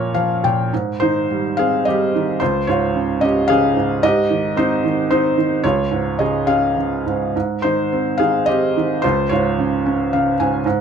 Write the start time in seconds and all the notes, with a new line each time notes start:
Already playing: A#2 F3 C#4 A#4 C#5
0.14 F3 F5
0.44 A#2 G5
0.73 G#2
1.00 D#3 D#4 C5
1.30 G3
1.57 C4 G#4 F5
1.85 G3 G4 D#5
2.15 D#3
2.40 C#2 F4 C5
2.67 G#2 F4 C#5
2.94 C#3
3.21 C#4 G4 D#5
3.48 C#3 G#4 F5
3.77 G#2
4.03 G#2 G4 D#5
4.30 D#3
4.56 C4 D#4 C5
4.84 D#3
5.10 C4 D#4 C5
5.38 D#3
5.64 C#2 F4 C#5
5.91 G#2
6.19 C#3 G#4 D#5
6.47 C#4 G#4 F5
6.77 C#3
7.06 G#2
7.36 G#2
7.62 D#3 D#4 C5
7.93 C4
8.18 D#3 G#4 F5
8.46 C4 G4 D#5
8.77 D#3
9.02 C#2 F4 C5
9.29 G#2 F4 C#5
9.58 C#3
9.86 C#4
10.13 C#3 F5
10.40 G#2 G#5
10.66 G#2